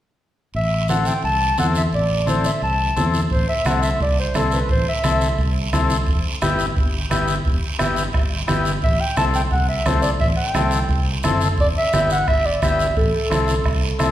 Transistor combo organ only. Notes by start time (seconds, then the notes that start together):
0.89 C4 E4 A4
1.58 C4 E4 A4
2.26 C4 E4 A4
2.96 C4 E4 A4
3.65 C4 E4 A4
4.35 C4 E4 A4
5.04 C4 E4 A4
5.73 C4 E4 A4
6.42 B3 E4 G4
7.10 B3 E4 G4
7.79 B3 E4 G4
8.47 B3 E4 G4
9.17 C4 E4 A4
9.86 C4 E4 A4
10.54 C4 E4 A4
11.24 C4 E4 A4
11.93 B3 E4 G4
12.63 B3 E4 G4
13.30 C4 E4 A4
13.99 C4 E4 A4